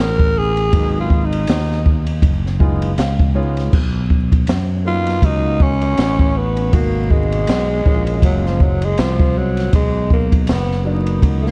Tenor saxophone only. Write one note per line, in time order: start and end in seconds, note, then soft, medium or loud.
0.00 0.39 A#4 loud
0.38 0.99 G#4 loud
1.00 1.26 F4 medium
1.25 1.99 D#4 medium
4.87 5.26 F4 loud
5.25 5.63 D#4 loud
5.62 6.39 C#4 loud
6.37 6.76 B3 loud
6.75 7.13 A#3 loud
7.11 8.24 G#3 loud
8.25 8.48 F#3 medium
8.46 8.63 F3 medium
8.62 8.86 F#3 medium
8.84 9.01 G#3 medium
9.00 9.39 F3 medium
9.37 9.74 F#3 medium
9.75 10.09 G#3 medium
10.13 10.44 A#3 medium
10.44 10.52 A#3 soft
10.50 10.87 B3 medium
11.41 11.49 A3 medium
11.47 11.51 A#3 medium